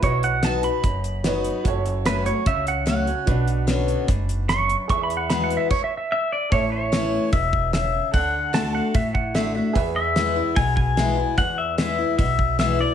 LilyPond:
<<
  \new Staff \with { instrumentName = "Pedal steel guitar" } { \time 4/4 \key a \major \tempo 4 = 148 cis''8 fis''8 a''8 b''2~ b''8~ | b''8 r8 b'8 cis''8 e''8 fis''8 fis''4~ | fis''4 r2 cis'''8 r8 | \tuplet 3/2 { cis'''8 b''8 fis''8 b''8 fis''8 e''8 cis''8 e''8 e''8~ } e''8 r8 |
r1 | r4 a''8 fis''8 e''8 fis''8 e''8 e''8~ | e''16 r2. r8. | r1 | }
  \new Staff \with { instrumentName = "Pedal steel guitar" } { \time 4/4 \key a \major r1 | r1 | r1 | r2. e''8 d''8 |
cis''8 cis''4. e''4 e''4 | fis''4 r2. | r8 e''4. gis''8 gis''4. | fis''8 e''8 e''4 e''4 e''8 d''8 | }
  \new Staff \with { instrumentName = "Upright piano" } { \time 4/4 \key a \major <fis' b' dis''>2. <fis' b' cis''>4 | <fis' a' cis''>1 | <d' fis' b'>1 | <gis' b' e''>2 r2 |
<a' cis'' e''>1 | <a' d'' fis''>1 | <gis' b' e''>1~ | <gis' b' e''>1 | }
  \new Staff \with { instrumentName = "Steel-string acoustic guitar" } { \time 4/4 \key a \major << { r4 <fis b dis' fis'>8 <dis' fis'>8 r4 <fis b dis' fis'>4 | r4 <fis a cis' fis'>8 <cis' fis'>8 r4 <fis a cis' fis'>8 <cis' fis'>8 | r4 <d b cis' fis'>4 r2 | r4 <e gis b fis'>4 r2 |
r4 <e a cis' e'>4 r2 | r4 <d a d' fis'>4 r4 <d a d' fis'>8 <d' fis'>8 | r4 <e gis b e'>8 <b e'>8 r4 <e gis b e'>8 <b e'>8 | r4 <e gis b e'>8 <b e'>8 r4 <e gis b e'>8 <b e'>8 | } \\ { b,2 fis,2 | fis,2 cis2 | b,2 gis,4 fis,4 | e,2 r2 |
a,2 b,4 cis4 | d2 a,2 | e,2 b,2 | e,2 b,2 | } >> }
  \new Staff \with { instrumentName = "Upright bass" } { \clef bass \time 4/4 \key a \major b,,2 fis,,2 | fis,,2 cis,2 | b,,2 fis,,2 | e,2 r2 |
a,,2 e,,2 | d,2 a,,2 | e,2 b,,2 | e,2 b,,2 | }
  \new DrumStaff \with { instrumentName = "Drums" } \drummode { \time 4/4 <hh bd>8 hh8 <hh sn>8 hh8 <hh bd>8 hh8 <hh sn>8 hh8 | <hh bd>8 hh8 <hh sn>8 hh8 <hh bd>8 hh8 <hh sn>8 hh8 | <hh bd>8 hh8 <hh sn>8 hh8 <hh bd>8 hh8 <hh sn>8 hh8 | <hh bd>8 hh8 <hh sn>8 hh8 <cymc bd>4 r4 |
<hho bd>4 <hho sn>4 <hho bd>8 bd8 <hho sn>4 | <hho bd>4 <hho sn>4 <hho bd>8 bd8 <hho sn>4 | <hho bd>4 <hho sn>4 <hho bd>8 bd8 <hho sn>4 | <hho bd>4 <hho sn>4 <hho bd>8 bd8 <hho sn>4 | }
>>